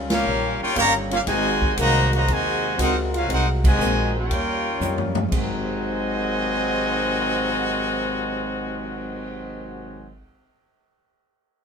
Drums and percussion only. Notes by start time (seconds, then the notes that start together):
0.10 snare, ride
0.76 kick, hi-hat pedal, ride
1.11 ride
1.27 kick, snare, ride
1.62 kick
1.77 kick, hi-hat pedal, ride
2.13 ride
2.28 kick, ride
2.79 kick, hi-hat pedal, ride
3.14 ride
3.29 kick, ride
3.64 kick, crash
3.80 hi-hat pedal
4.31 kick, ride
4.81 hi-hat pedal, high tom
4.98 floor tom
5.15 floor tom
5.32 kick, crash
5.67 cymbal swell